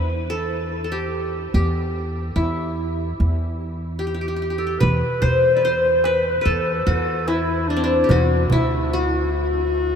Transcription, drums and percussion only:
4.81 darbuka dum
5.22 darbuka dum
5.85 darbuka ka
6.04 darbuka tek
6.25 darbuka ka
6.45 darbuka ka
7.07 darbuka ka
7.28 darbuka tek
7.69 darbuka ka
8.09 darbuka dum
8.50 darbuka dum
9.12 darbuka ka
9.54 darbuka ka
9.74 darbuka ka

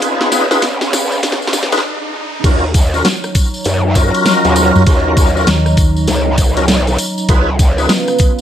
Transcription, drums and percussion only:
0.02 kick, closed hi-hat, tambourine
0.21 snare
0.32 snare, closed hi-hat, tambourine
0.51 snare, tambourine
0.62 kick, snare, closed hi-hat, tambourine
0.81 snare, tambourine
0.93 snare, closed hi-hat, tambourine
1.12 tambourine
1.23 kick, snare, closed hi-hat, tambourine
1.32 snare
1.42 tambourine
1.47 snare
1.53 snare, closed hi-hat, tambourine
1.63 snare
1.72 snare, closed hi-hat, tambourine
1.77 snare
2.44 kick, closed hi-hat, tambourine, crash
2.74 kick, closed hi-hat, tambourine
2.94 tambourine
3.05 snare, closed hi-hat, tambourine
3.24 cross-stick, tambourine
3.35 kick, closed hi-hat, tambourine
3.54 tambourine
3.64 closed hi-hat, tambourine
3.95 kick, closed hi-hat, tambourine
4.14 closed hi-hat, tambourine
4.26 snare, closed hi-hat, tambourine
4.45 closed hi-hat, tambourine
4.56 closed hi-hat, tambourine
4.75 tambourine
4.86 kick, closed hi-hat, tambourine
5.17 kick, closed hi-hat, tambourine
5.37 tambourine
5.47 snare, closed hi-hat, tambourine
5.66 cross-stick, tambourine
5.77 kick, closed hi-hat, tambourine
5.97 tambourine
6.07 snare, closed hi-hat, tambourine
6.38 kick, closed hi-hat, tambourine
6.57 closed hi-hat, tambourine
6.68 snare, closed hi-hat, tambourine
6.87 closed hi-hat, tambourine
6.98 closed hi-hat, tambourine
7.18 tambourine
7.29 kick, closed hi-hat, tambourine
7.59 kick, closed hi-hat, tambourine
7.78 tambourine
7.89 snare, closed hi-hat, tambourine
8.08 cross-stick, tambourine
8.18 kick, closed hi-hat, tambourine

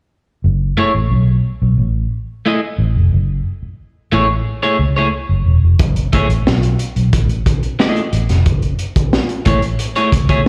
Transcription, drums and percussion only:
5.79 kick, closed hi-hat
5.96 closed hi-hat
6.13 kick, closed hi-hat
6.30 closed hi-hat
6.47 snare
6.63 closed hi-hat
6.79 closed hi-hat
6.96 closed hi-hat
7.13 kick, closed hi-hat
7.29 closed hi-hat
7.46 kick, closed hi-hat
7.63 closed hi-hat
7.80 snare
7.96 closed hi-hat
8.13 closed hi-hat
8.29 snare, closed hi-hat
8.46 kick, closed hi-hat
8.62 closed hi-hat
8.79 closed hi-hat
8.96 kick, closed hi-hat
9.13 snare
9.29 closed hi-hat
9.45 kick, closed hi-hat
9.62 closed hi-hat
9.79 closed hi-hat
9.96 closed hi-hat
10.12 kick, closed hi-hat
10.29 kick, closed hi-hat

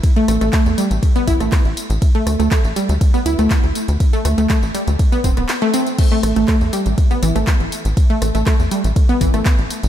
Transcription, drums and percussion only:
0.04 kick, closed hi-hat, ride, tambourine
0.16 closed hi-hat
0.28 cross-stick, open hi-hat, tambourine
0.41 closed hi-hat, tambourine
0.53 kick, clap, closed hi-hat, ride, tambourine
0.66 closed hi-hat, tambourine
0.78 open hi-hat, tambourine
0.91 closed hi-hat, tambourine
1.03 kick, closed hi-hat, ride, tambourine
1.16 closed hi-hat, tambourine
1.27 kick, open hi-hat, tambourine
1.40 cross-stick, closed hi-hat, tambourine
1.52 kick, clap, closed hi-hat, ride, tambourine
1.65 closed hi-hat
1.77 open hi-hat, tambourine
1.90 closed hi-hat, tambourine
2.02 kick, closed hi-hat, ride, tambourine
2.15 closed hi-hat
2.27 cross-stick, open hi-hat, tambourine
2.40 closed hi-hat, tambourine
2.51 kick, clap, closed hi-hat, ride, tambourine
2.65 closed hi-hat, tambourine
2.76 open hi-hat, tambourine
2.89 closed hi-hat, tambourine
3.01 kick, closed hi-hat, ride, tambourine
3.14 closed hi-hat, tambourine
3.26 open hi-hat, tambourine
3.39 cross-stick, closed hi-hat, tambourine
3.50 kick, clap, closed hi-hat, ride, tambourine
3.64 closed hi-hat
3.75 open hi-hat, tambourine
3.88 closed hi-hat, tambourine
4.00 kick, closed hi-hat, ride, tambourine
4.13 closed hi-hat, tambourine
4.25 cross-stick, open hi-hat, tambourine
4.38 closed hi-hat, tambourine
4.49 kick, clap, closed hi-hat, ride, tambourine
4.63 closed hi-hat, tambourine
4.75 open hi-hat, tambourine
4.88 closed hi-hat, tambourine
4.99 kick, closed hi-hat, ride, tambourine
5.12 closed hi-hat, tambourine
5.24 kick, open hi-hat, tambourine
5.37 cross-stick, closed hi-hat, tambourine
5.49 clap, closed hi-hat, ride, tambourine
5.62 closed hi-hat
5.74 open hi-hat, tambourine
5.87 closed hi-hat, tambourine
5.99 kick, closed hi-hat, crash, ride, tambourine
6.11 closed hi-hat
6.23 cross-stick, open hi-hat, tambourine
6.36 closed hi-hat, tambourine
6.48 kick, clap, closed hi-hat, ride, tambourine
6.61 closed hi-hat, tambourine
6.73 open hi-hat, tambourine
6.86 closed hi-hat, tambourine
6.98 kick, closed hi-hat, ride, tambourine
7.11 closed hi-hat, tambourine
7.23 open hi-hat, tambourine
7.36 cross-stick, closed hi-hat, tambourine
7.47 kick, clap, closed hi-hat, ride, tambourine
7.60 closed hi-hat
7.72 open hi-hat, tambourine
7.85 closed hi-hat, tambourine
7.97 kick, closed hi-hat, ride, tambourine
8.10 closed hi-hat
8.22 cross-stick, open hi-hat, tambourine
8.35 closed hi-hat, tambourine
8.46 kick, clap, closed hi-hat, ride, tambourine
8.60 closed hi-hat, tambourine
8.71 open hi-hat, tambourine
8.84 closed hi-hat, tambourine
8.96 kick, closed hi-hat, ride, tambourine
9.09 closed hi-hat, tambourine
9.21 kick, open hi-hat, tambourine
9.34 cross-stick, closed hi-hat, tambourine
9.45 kick, clap, closed hi-hat, ride, tambourine
9.59 closed hi-hat
9.71 open hi-hat, tambourine
9.83 closed hi-hat, tambourine

